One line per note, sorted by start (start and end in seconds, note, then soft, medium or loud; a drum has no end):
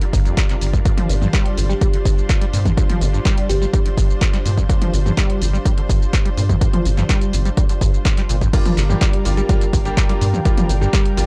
0.00 0.05 D3 medium
0.00 8.49 G3 medium
0.00 8.49 D4 medium
0.00 8.49 F4 medium
0.00 0.84 A#4 medium
0.00 closed hi-hat soft
0.13 0.30 G1 medium
0.13 0.20 G2 loud
0.13 kick medium
0.13 open hi-hat loud
0.13 shaker medium
0.25 0.35 F2 medium
0.25 closed hi-hat soft
0.25 shaker soft
0.37 kick loud
0.37 clap loud
0.37 closed hi-hat medium
0.37 shaker soft
0.49 0.56 C3 medium
0.49 clap soft
0.49 closed hi-hat soft
0.61 0.68 G1 loud
0.61 0.78 G1 medium
0.61 open hi-hat medium
0.61 shaker medium
0.73 0.80 G2 loud
0.73 kick medium
0.73 closed hi-hat soft
0.73 shaker soft
0.85 0.92 G2 medium
0.85 8.52 C5 medium
0.85 kick loud
0.85 closed hi-hat medium
0.85 shaker soft
0.97 1.11 F3 medium
0.97 closed hi-hat soft
0.97 mid tom medium
1.09 1.26 G1 loud
1.09 1.16 G2 medium
1.09 open hi-hat loud
1.09 shaker medium
1.21 1.28 G2 loud
1.21 mid tom medium
1.21 shaker soft
1.33 1.59 G3 loud
1.33 kick loud
1.33 clap loud
1.33 closed hi-hat medium
1.33 shaker soft
1.46 closed hi-hat soft
1.57 1.74 G1 loud
1.57 1.67 G1 medium
1.57 open hi-hat medium
1.57 shaker medium
1.69 1.73 G3 loud
1.69 1.86 G4 medium
1.69 shaker soft
1.81 1.88 G3 medium
1.81 kick loud
1.81 closed hi-hat medium
1.81 shaker soft
1.94 1.97 D3 medium
1.94 closed hi-hat soft
2.05 2.22 G1 medium
2.05 2.15 G2 medium
2.05 kick medium
2.05 open hi-hat loud
2.05 shaker medium
2.18 shaker soft
2.29 kick loud
2.29 clap loud
2.29 closed hi-hat medium
2.29 shaker soft
2.41 2.45 G3 loud
2.41 closed hi-hat soft
2.53 2.70 G2 medium
2.53 2.60 A#2 medium
2.53 open hi-hat medium
2.53 shaker medium
2.65 2.72 G2 loud
2.65 kick medium
2.65 closed hi-hat soft
2.65 mid tom medium
2.65 shaker soft
2.77 2.84 G2 medium
2.77 kick loud
2.77 closed hi-hat medium
2.77 shaker soft
2.90 3.03 F3 medium
2.90 closed hi-hat soft
2.90 mid tom medium
3.01 3.18 G1 loud
3.01 3.08 G2 medium
3.01 open hi-hat loud
3.01 shaker medium
3.14 3.20 G2 loud
3.14 shaker soft
3.25 3.51 G3 loud
3.25 kick loud
3.25 clap loud
3.25 closed hi-hat medium
3.25 shaker soft
3.38 closed hi-hat soft
3.49 3.66 G1 loud
3.49 3.59 G1 medium
3.49 3.85 G4 medium
3.49 open hi-hat medium
3.49 shaker medium
3.62 3.65 G3 loud
3.62 shaker soft
3.73 3.80 G3 medium
3.73 kick loud
3.73 closed hi-hat medium
3.73 shaker soft
3.86 3.89 D3 medium
3.86 closed hi-hat soft
3.97 4.14 G1 medium
3.97 4.07 G2 medium
3.97 kick medium
3.97 open hi-hat loud
3.97 shaker medium
4.10 shaker soft
4.21 kick loud
4.21 clap loud
4.21 closed hi-hat medium
4.21 shaker soft
4.33 4.37 G3 loud
4.33 clap soft
4.33 closed hi-hat medium
4.45 4.62 G2 medium
4.45 4.52 A#2 medium
4.45 open hi-hat medium
4.45 shaker medium
4.57 4.64 G2 loud
4.57 kick medium
4.57 closed hi-hat soft
4.57 shaker soft
4.69 4.76 G2 medium
4.69 kick loud
4.69 closed hi-hat medium
4.69 shaker soft
4.81 4.95 F3 medium
4.81 closed hi-hat medium
4.81 mid tom medium
4.93 5.10 G1 loud
4.93 5.00 G2 medium
4.93 open hi-hat medium
4.93 shaker medium
5.05 5.12 G2 loud
5.05 mid tom medium
5.05 shaker soft
5.17 5.43 G3 loud
5.17 kick loud
5.17 clap loud
5.17 closed hi-hat medium
5.17 shaker soft
5.30 closed hi-hat medium
5.41 5.51 G1 medium
5.41 5.58 G1 loud
5.41 open hi-hat medium
5.41 shaker medium
5.53 5.57 G3 loud
5.53 shaker soft
5.65 5.72 G3 medium
5.65 kick loud
5.65 closed hi-hat medium
5.65 shaker soft
5.77 5.81 D3 medium
5.77 closed hi-hat medium
5.89 6.06 G1 medium
5.89 5.99 G2 medium
5.89 kick medium
5.89 open hi-hat loud
5.89 shaker medium
6.02 shaker soft
6.13 kick loud
6.13 clap loud
6.13 closed hi-hat medium
6.13 shaker soft
6.25 6.29 G3 loud
6.25 closed hi-hat medium
6.37 6.54 G2 medium
6.37 6.44 A#2 medium
6.37 open hi-hat medium
6.37 shaker medium
6.49 6.56 G2 loud
6.49 kick medium
6.49 closed hi-hat soft
6.49 mid tom medium
6.49 shaker soft
6.61 6.68 G2 medium
6.61 kick loud
6.61 closed hi-hat medium
6.61 shaker soft
6.73 6.87 F3 medium
6.73 closed hi-hat medium
6.73 mid tom medium
6.85 7.02 G1 loud
6.85 6.92 G2 medium
6.85 open hi-hat loud
6.85 shaker medium
6.97 7.04 G2 loud
6.97 clap soft
6.97 closed hi-hat soft
6.97 mid tom medium
6.97 shaker soft
7.09 7.35 G3 loud
7.09 kick loud
7.09 clap loud
7.09 closed hi-hat medium
7.09 shaker soft
7.21 closed hi-hat medium
7.21 shaker soft
7.33 7.50 G1 loud
7.33 7.43 G1 medium
7.33 open hi-hat medium
7.33 shaker medium
7.45 7.49 G3 loud
7.45 closed hi-hat soft
7.45 shaker soft
7.57 7.64 G3 medium
7.57 kick loud
7.57 closed hi-hat medium
7.57 shaker soft
7.69 7.73 D3 medium
7.69 closed hi-hat medium
7.69 shaker soft
7.81 7.98 G1 medium
7.81 7.91 G2 medium
7.81 kick medium
7.81 open hi-hat loud
7.81 shaker medium
7.94 shaker soft
8.05 kick loud
8.05 clap loud
8.05 closed hi-hat medium
8.05 shaker soft
8.17 8.21 G3 loud
8.17 clap soft
8.17 closed hi-hat medium
8.29 8.46 G1 medium
8.29 8.36 A#2 medium
8.29 open hi-hat medium
8.29 shaker medium
8.41 8.48 G2 loud
8.41 kick medium
8.41 closed hi-hat soft
8.41 shaker soft
8.53 8.60 G2 medium
8.53 11.26 G3 medium
8.53 8.73 G3 medium
8.53 8.73 A#3 medium
8.53 8.73 D4 medium
8.53 11.26 D4 medium
8.53 11.26 F4 medium
8.53 8.73 F4 loud
8.53 11.26 G4 medium
8.53 11.26 A#4 loud
8.53 kick loud
8.53 closed hi-hat medium
8.53 crash loud
8.53 shaker soft
8.65 8.79 F3 medium
8.65 closed hi-hat medium
8.65 mid tom medium
8.65 shaker soft
8.77 8.94 G1 loud
8.77 8.84 G2 medium
8.77 clap medium
8.77 open hi-hat loud
8.77 shaker medium
8.87 8.96 G2 loud
8.87 9.02 G3 medium
8.87 9.02 A#3 medium
8.87 9.02 D4 medium
8.87 9.02 G4 medium
8.87 11.26 D5 medium
8.87 mid tom medium
8.87 shaker soft
9.01 9.27 G3 loud
9.01 11.26 G5 medium
9.01 kick loud
9.01 clap loud
9.01 closed hi-hat medium
9.01 shaker soft
9.13 closed hi-hat medium
9.25 9.35 G1 medium
9.25 9.42 G1 medium
9.25 9.47 G3 medium
9.25 9.47 A#3 medium
9.25 9.47 D4 medium
9.25 9.47 F4 loud
9.25 open hi-hat medium
9.25 shaker medium
9.37 9.41 G3 loud
9.37 9.54 G4 medium
9.37 closed hi-hat soft
9.37 shaker soft
9.49 9.62 G3 loud
9.49 9.56 G3 medium
9.49 9.62 A#3 medium
9.49 9.62 D4 medium
9.49 9.62 F4 loud
9.49 kick loud
9.49 closed hi-hat medium
9.49 shaker soft
9.61 9.65 D3 medium
9.61 closed hi-hat medium
9.61 shaker soft
9.73 9.90 G1 medium
9.73 9.83 G2 medium
9.73 kick medium
9.73 open hi-hat loud
9.73 shaker medium
9.85 10.05 G3 loud
9.85 10.05 A#3 medium
9.85 10.05 D4 medium
9.85 10.05 G4 loud
9.85 closed hi-hat soft
9.85 shaker soft
9.97 kick loud
9.97 clap loud
9.97 closed hi-hat medium
9.97 shaker soft
10.09 10.13 G3 loud
10.09 10.22 G3 medium
10.09 10.22 A#3 medium
10.09 10.22 D4 medium
10.09 10.22 F4 medium
10.09 closed hi-hat medium
10.21 10.38 G2 medium
10.21 10.28 A#2 medium
10.21 open hi-hat medium
10.21 shaker medium
10.33 10.40 G2 loud
10.33 mid tom medium
10.33 shaker soft
10.45 10.52 G2 medium
10.45 10.65 G3 medium
10.45 10.65 A#3 medium
10.45 10.65 D4 medium
10.45 10.65 F4 medium
10.45 kick loud
10.45 closed hi-hat medium
10.45 shaker soft
10.57 10.71 F3 medium
10.57 closed hi-hat medium
10.57 mid tom loud
10.57 shaker soft
10.69 10.86 G1 loud
10.69 10.76 G2 medium
10.69 open hi-hat loud
10.69 shaker medium
10.81 10.88 G2 loud
10.81 10.94 G3 medium
10.81 10.94 A#3 medium
10.81 10.94 D4 medium
10.81 10.94 G4 loud
10.81 11.26 G4 medium
10.81 shaker soft
10.93 11.19 G3 loud
10.93 kick loud
10.93 clap loud
10.93 closed hi-hat medium
10.93 shaker soft
11.06 closed hi-hat medium
11.17 11.26 G1 medium
11.17 11.26 G3 medium
11.17 11.26 A#3 medium
11.17 11.26 D4 medium
11.17 11.26 F4 loud
11.17 open hi-hat loud
11.17 shaker medium